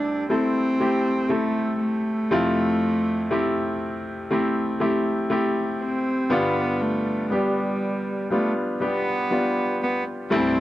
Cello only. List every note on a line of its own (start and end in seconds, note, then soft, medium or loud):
0.00 0.30 D4 medium
0.30 1.32 C4 medium
1.30 1.79 A3 medium
1.80 3.76 A3 medium
5.82 6.33 C4 medium
6.32 6.83 B3 medium
6.81 7.33 A3 medium
7.31 8.31 G3 medium
8.32 8.52 A3 medium
8.83 9.78 B3 medium
9.83 10.03 B3 medium
10.32 10.60 C4 medium